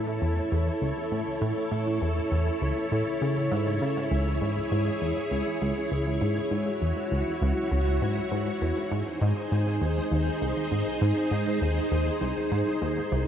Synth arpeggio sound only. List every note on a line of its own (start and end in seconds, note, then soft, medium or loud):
0.00 0.19 A2 medium
0.22 0.40 E2 medium
0.52 0.70 E2 medium
0.82 0.93 C#2 medium
1.12 1.23 A2 medium
1.42 1.53 A2 loud
1.72 1.99 A2 medium
2.02 2.20 E2 medium
2.32 2.50 E2 medium
2.62 2.73 C#2 medium
2.92 3.03 A2 medium
3.22 3.49 C#3 medium
3.52 3.79 G#2 loud
3.82 4.09 C#3 medium
4.11 4.39 C#2 medium
4.41 4.60 G#2 medium
4.72 4.90 G#2 medium
5.02 5.13 E2 medium
5.31 5.42 C#2 medium
5.62 5.73 C#2 medium
5.92 6.19 C#2 medium
6.21 6.40 G#2 medium
6.51 6.70 G#2 medium
6.82 6.93 E2 medium
7.12 7.23 C#2 medium
7.42 7.53 C#2 loud
7.72 7.99 C#2 medium
8.02 8.20 G#2 medium
8.32 8.50 G#2 medium
8.61 8.73 E2 medium
8.92 9.03 G#2 medium
9.22 9.33 G#2 loud
9.52 9.79 G#2 medium
9.81 10.00 D#2 medium
10.12 10.30 D#2 medium
10.42 10.53 C2 medium
10.72 10.83 G#2 medium
11.01 11.12 G#2 loud
11.31 11.59 G#2 medium
11.61 11.80 D#2 medium
11.92 12.10 D#2 medium
12.21 12.32 C2 medium
12.52 12.63 G#2 medium
12.82 13.00 D#2 medium
13.12 13.27 C2 loud